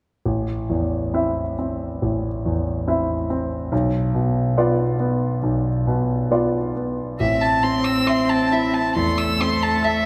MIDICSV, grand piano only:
0, 0, Header, 1, 2, 480
1, 0, Start_track
1, 0, Key_signature, 0, "minor"
1, 0, Tempo, 883652
1, 130, Time_signature, 4, 2, 24, 8
1, 1091, Tempo, 852273
1, 3011, Tempo, 882353
1, 5534, End_track
2, 0, Start_track
2, 0, Title_t, "Grand piano"
2, 0, Program_c, 0, 0
2, 139, Note_on_c, 0, 33, 36
2, 245, Control_c, 0, 64, 127
2, 379, Note_on_c, 0, 40, 28
2, 618, Note_on_c, 0, 60, 29
2, 618, Note_on_c, 0, 64, 30
2, 622, Note_on_c, 0, 76, 31
2, 762, Note_off_c, 0, 40, 0
2, 835, Note_off_c, 0, 60, 0
2, 835, Note_off_c, 0, 64, 0
2, 836, Note_off_c, 0, 76, 0
2, 862, Note_on_c, 0, 60, 29
2, 1074, Note_off_c, 0, 33, 0
2, 1099, Note_on_c, 0, 33, 37
2, 1242, Note_off_c, 0, 60, 0
2, 1343, Note_on_c, 0, 40, 31
2, 1579, Note_on_c, 0, 60, 32
2, 1580, Note_on_c, 0, 64, 34
2, 1584, Note_on_c, 0, 76, 35
2, 1725, Note_off_c, 0, 40, 0
2, 1796, Note_off_c, 0, 60, 0
2, 1796, Note_off_c, 0, 64, 0
2, 1798, Note_off_c, 0, 76, 0
2, 1819, Note_on_c, 0, 60, 35
2, 2036, Note_off_c, 0, 33, 0
2, 2055, Note_on_c, 0, 35, 46
2, 2056, Note_off_c, 0, 60, 0
2, 2064, Control_c, 0, 64, 0
2, 2145, Control_c, 0, 64, 127
2, 2292, Note_on_c, 0, 47, 38
2, 2535, Note_on_c, 0, 59, 38
2, 2537, Note_on_c, 0, 65, 35
2, 2539, Note_on_c, 0, 74, 41
2, 2676, Note_off_c, 0, 47, 0
2, 2750, Note_off_c, 0, 59, 0
2, 2752, Note_off_c, 0, 65, 0
2, 2752, Note_off_c, 0, 74, 0
2, 2774, Note_on_c, 0, 59, 36
2, 2990, Note_off_c, 0, 35, 0
2, 3017, Note_on_c, 0, 35, 42
2, 3155, Note_off_c, 0, 59, 0
2, 3258, Note_on_c, 0, 47, 38
2, 3496, Note_on_c, 0, 59, 35
2, 3500, Note_on_c, 0, 65, 33
2, 3500, Note_on_c, 0, 74, 36
2, 3642, Note_off_c, 0, 47, 0
2, 3718, Note_off_c, 0, 59, 0
2, 3720, Note_off_c, 0, 65, 0
2, 3720, Note_off_c, 0, 74, 0
2, 3738, Note_on_c, 0, 59, 28
2, 3961, Note_off_c, 0, 35, 0
2, 3982, Note_off_c, 0, 59, 0
2, 3982, Note_on_c, 0, 33, 41
2, 3990, Control_c, 0, 64, 0
2, 4089, Control_c, 0, 64, 127
2, 4219, Note_on_c, 0, 60, 33
2, 4454, Note_on_c, 0, 76, 36
2, 4603, Note_off_c, 0, 60, 0
2, 4696, Note_on_c, 0, 64, 33
2, 4841, Note_off_c, 0, 76, 0
2, 4919, Note_off_c, 0, 33, 0
2, 4938, Note_on_c, 0, 40, 35
2, 5081, Note_off_c, 0, 64, 0
2, 5180, Note_on_c, 0, 60, 33
2, 5319, Note_off_c, 0, 40, 0
2, 5410, Note_on_c, 0, 76, 37
2, 5534, Note_off_c, 0, 60, 0
2, 5534, Note_off_c, 0, 76, 0
2, 5534, End_track
0, 0, End_of_file